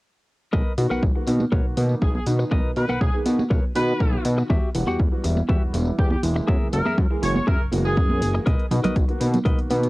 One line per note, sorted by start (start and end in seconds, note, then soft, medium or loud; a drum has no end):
0.53 0.62 B1 medium
0.53 0.72 A#4 loud
0.53 0.72 B4 loud
0.53 0.72 D#5 loud
0.53 kick loud
0.53 tambourine soft
0.53 high conga medium
0.78 0.87 B2 medium
0.78 1.12 D#3 medium
0.78 1.13 B3 medium
0.78 1.13 F#4 medium
0.78 open hi-hat loud
0.78 tambourine medium
0.90 1.00 B1 soft
0.90 1.03 A#4 medium
0.90 1.03 B4 medium
0.90 1.03 F#5 medium
0.90 tambourine medium
0.90 high conga medium
1.03 1.12 B1 loud
1.03 kick loud
1.03 tambourine soft
1.15 1.26 D#3 medium
1.15 1.26 A#3 medium
1.15 1.26 B3 medium
1.15 1.26 F#4 medium
1.15 muted clean electric guitar stroke soft
1.27 1.45 B2 medium
1.27 1.40 D#3 medium
1.27 1.40 A#3 medium
1.27 1.41 B3 medium
1.27 1.41 D#4 medium
1.27 muted clean electric guitar stroke soft
1.27 open hi-hat loud
1.27 tambourine medium
1.40 tambourine soft
1.40 high conga medium
1.52 1.61 B1 loud
1.52 1.74 D#3 medium
1.52 1.74 A#3 medium
1.52 1.75 B3 medium
1.52 1.75 F#4 medium
1.52 1.65 A#4 medium
1.52 1.65 B4 medium
1.52 1.65 C#5 medium
1.52 kick loud
1.52 tambourine soft
1.65 1.75 B2 soft
1.77 1.95 B2 loud
1.77 1.97 D#3 medium
1.77 1.97 A#3 medium
1.77 1.97 B3 medium
1.77 1.98 D#4 medium
1.77 muted clean electric guitar stroke soft
1.77 open hi-hat loud
1.77 tambourine medium
1.77 high conga medium
1.89 tambourine medium
2.02 2.20 B1 loud
2.02 2.10 G#4 medium
2.02 kick loud
2.02 tambourine soft
2.15 2.23 G#4 medium
2.15 high conga medium
2.26 2.45 B2 medium
2.26 2.73 D#3 medium
2.26 2.74 B3 medium
2.26 2.74 D#4 medium
2.26 open hi-hat loud
2.26 tambourine loud
2.39 muted clean electric guitar stroke medium
2.39 tambourine medium
2.51 2.61 B1 medium
2.51 2.70 A#4 loud
2.51 2.70 B4 loud
2.51 2.70 D#5 loud
2.51 kick loud
2.51 tambourine soft
2.51 high conga medium
2.64 2.74 B2 soft
2.76 2.86 B2 loud
2.76 2.89 D#3 medium
2.76 2.89 A#3 medium
2.76 2.89 B3 medium
2.76 2.89 D#4 medium
2.76 2.99 B4 medium
2.76 open hi-hat loud
2.76 tambourine medium
2.89 2.99 B1 soft
2.89 3.01 A#4 medium
2.89 3.01 B4 medium
2.89 3.01 F#5 medium
2.89 tambourine medium
2.89 high conga medium
3.01 3.10 B1 loud
3.01 3.16 G#4 medium
3.01 kick loud
3.01 tambourine soft
3.14 3.23 D#3 medium
3.14 3.23 A#3 medium
3.14 3.23 B3 medium
3.14 3.23 G#4 medium
3.14 muted clean electric guitar stroke soft
3.26 3.44 B2 medium
3.26 3.39 D#3 medium
3.26 3.39 A#3 medium
3.26 3.39 B3 medium
3.26 3.39 F#4 medium
3.26 muted clean electric guitar stroke soft
3.26 open hi-hat loud
3.26 tambourine medium
3.39 tambourine soft
3.39 high conga medium
3.50 3.60 B1 loud
3.50 3.63 A#4 medium
3.50 3.63 B4 medium
3.50 3.64 C#5 medium
3.50 kick loud
3.50 tambourine soft
3.64 3.73 B2 soft
3.75 3.93 B2 loud
3.75 4.48 D#3 medium
3.75 4.49 B3 medium
3.75 4.49 F#4 loud
3.75 4.25 B4 medium
3.75 muted clean electric guitar stroke soft
3.75 open hi-hat loud
3.75 tambourine medium
3.75 high conga medium
3.88 tambourine soft
4.00 4.18 B1 loud
4.00 kick loud
4.00 tambourine soft
4.13 high conga medium
4.25 4.43 B2 medium
4.25 open hi-hat loud
4.25 tambourine medium
4.38 muted clean electric guitar stroke medium
4.38 tambourine soft
4.50 4.59 E2 loud
4.50 4.69 F#4 loud
4.50 4.69 G4 medium
4.50 4.69 E5 loud
4.50 kick loud
4.50 tambourine soft
4.50 high conga loud
4.74 4.84 E1 loud
4.74 5.09 E3 medium
4.74 5.09 G3 medium
4.74 5.09 B3 medium
4.74 5.09 F#5 medium
4.74 open hi-hat loud
4.74 tambourine medium
4.87 4.97 E2 soft
4.87 4.99 F#4 medium
4.87 4.99 G4 medium
4.87 5.00 F#5 medium
4.87 tambourine soft
4.87 high conga medium
4.99 5.09 E2 loud
4.99 kick loud
4.99 tambourine soft
5.12 5.22 E3 medium
5.12 5.22 G3 medium
5.12 5.22 B3 medium
5.12 5.23 F#4 medium
5.12 muted clean electric guitar stroke soft
5.23 5.42 E1 loud
5.23 5.37 E3 medium
5.23 5.37 G3 medium
5.23 5.37 B3 medium
5.23 5.37 E4 medium
5.23 muted clean electric guitar stroke soft
5.23 open hi-hat loud
5.23 tambourine medium
5.37 tambourine soft
5.37 high conga medium
5.49 5.58 E2 loud
5.49 5.71 E3 medium
5.49 5.71 G3 medium
5.49 5.71 B3 medium
5.49 5.62 F#4 medium
5.49 5.71 F#4 medium
5.49 5.62 G4 medium
5.49 5.62 E5 medium
5.49 kick loud
5.49 tambourine soft
5.62 5.72 E1 soft
5.73 5.92 E1 loud
5.73 5.94 E3 medium
5.73 5.94 G3 medium
5.73 5.94 B3 medium
5.73 5.94 E4 medium
5.73 muted clean electric guitar stroke soft
5.73 open hi-hat loud
5.73 tambourine medium
5.73 high conga medium
5.86 tambourine medium
5.99 6.16 E2 loud
5.99 6.07 G4 medium
5.99 kick loud
5.99 tambourine soft
6.11 6.19 G4 medium
6.11 high conga loud
6.23 6.41 E1 medium
6.23 6.70 E3 medium
6.23 6.70 G#3 medium
6.23 6.70 A#3 medium
6.23 6.70 E4 medium
6.23 open hi-hat loud
6.23 tambourine medium
6.36 muted clean electric guitar stroke medium
6.36 tambourine soft
6.48 6.57 F#2 medium
6.48 6.67 G#4 loud
6.48 6.67 A#4 loud
6.48 6.67 E5 loud
6.48 kick loud
6.48 tambourine soft
6.48 high conga loud
6.61 6.71 F#1 soft
6.73 6.82 F#1 loud
6.73 6.86 E3 medium
6.73 6.86 G#3 medium
6.73 6.86 A#3 medium
6.73 6.86 E4 medium
6.73 6.95 A#4 medium
6.73 open hi-hat loud
6.73 tambourine medium
6.85 6.95 F#2 soft
6.85 6.98 G#4 medium
6.85 6.98 A#4 medium
6.85 6.98 E5 medium
6.85 tambourine soft
6.85 high conga medium
6.98 7.07 F#2 loud
6.98 kick loud
6.98 tambourine soft
7.10 7.20 E3 medium
7.10 7.20 G#3 medium
7.10 7.20 A#3 medium
7.10 7.20 G#4 medium
7.10 muted clean electric guitar stroke soft
7.22 7.40 F#1 medium
7.22 7.35 E3 medium
7.22 7.35 G#3 medium
7.22 7.35 A#3 medium
7.22 7.35 F#4 medium
7.22 7.31 C#5 medium
7.22 muted clean electric guitar stroke soft
7.22 open hi-hat loud
7.22 tambourine medium
7.35 7.43 C#5 medium
7.35 tambourine soft
7.35 high conga medium
7.47 7.57 F#2 loud
7.47 7.60 G#4 medium
7.47 7.60 A#4 medium
7.47 7.62 A#4 medium
7.47 7.60 E5 medium
7.47 kick loud
7.47 tambourine soft
7.60 7.70 F#1 soft
7.71 7.99 F#1 medium
7.71 8.45 E3 medium
7.71 8.45 G#3 medium
7.71 8.45 A#3 medium
7.71 8.45 F#4 loud
7.71 muted clean electric guitar stroke soft
7.71 open hi-hat loud
7.71 tambourine medium
7.71 high conga medium
7.85 8.35 G#4 medium
7.85 tambourine medium
7.97 8.23 F#2 loud
7.97 kick loud
7.97 tambourine soft
8.10 high conga medium
8.21 8.39 F#1 loud
8.21 open hi-hat loud
8.21 tambourine medium
8.34 muted clean electric guitar stroke medium
8.34 tambourine soft
8.46 8.56 B1 medium
8.46 8.65 A#4 loud
8.46 8.65 B4 loud
8.46 8.65 D#5 loud
8.46 kick loud
8.46 closed hi-hat soft
8.46 tambourine soft
8.46 high conga medium
8.59 closed hi-hat soft
8.71 8.80 B2 loud
8.71 9.06 D#3 medium
8.71 9.06 B3 medium
8.71 9.06 F#4 medium
8.71 open hi-hat loud
8.71 tambourine medium
8.71 low conga medium
8.84 8.94 B1 soft
8.84 8.96 A#4 medium
8.84 8.96 B4 medium
8.84 8.96 D#5 medium
8.84 closed hi-hat soft
8.84 tambourine medium
8.84 high conga medium
8.84 low conga medium
8.96 9.05 B1 loud
8.96 kick loud
8.96 closed hi-hat soft
8.96 tambourine soft
9.08 9.19 D#3 medium
9.08 9.19 A#3 medium
9.08 9.19 B3 medium
9.08 9.20 F#4 medium
9.08 muted clean electric guitar stroke soft
9.08 closed hi-hat soft
9.20 9.39 B2 loud
9.20 9.34 D#3 medium
9.20 9.34 A#3 medium
9.20 9.34 B3 medium
9.20 9.34 D#4 loud
9.20 muted clean electric guitar stroke soft
9.20 open hi-hat loud
9.20 tambourine medium
9.34 closed hi-hat soft
9.34 tambourine soft
9.34 high conga medium
9.34 low conga medium
9.45 9.55 B1 loud
9.45 9.68 D#3 medium
9.45 9.68 A#3 medium
9.45 9.68 B3 medium
9.45 9.68 F#4 medium
9.45 9.58 A#4 medium
9.45 9.58 B4 medium
9.45 9.59 D#5 loud
9.45 kick loud
9.45 closed hi-hat soft
9.58 9.68 B2 soft
9.58 closed hi-hat soft
9.70 9.88 B2 loud
9.70 9.89 D#3 medium
9.70 9.89 A#3 medium
9.70 9.89 B3 medium
9.70 9.89 D#4 medium
9.70 muted clean electric guitar stroke soft
9.70 open hi-hat loud
9.70 tambourine medium
9.70 high conga medium
9.83 closed hi-hat soft
9.83 tambourine soft